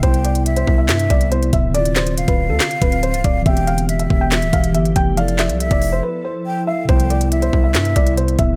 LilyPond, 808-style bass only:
\new Staff \with { instrumentName = "808-style bass" } { \clef bass \time 4/4 \key c \major \tempo 4 = 140 c,4. c,8 g,8 c,4 d,,8~ | d,,4~ d,,16 d,,8 d,16 r8 d,,8. c,,16 d,,8 | e,,4. e,,8. d,,16 e,,8 g,,8 f,,8~ | f,,8. c,8 f,,8. r2 |
c,4. c,8 g,8 c,4 d,,8 | }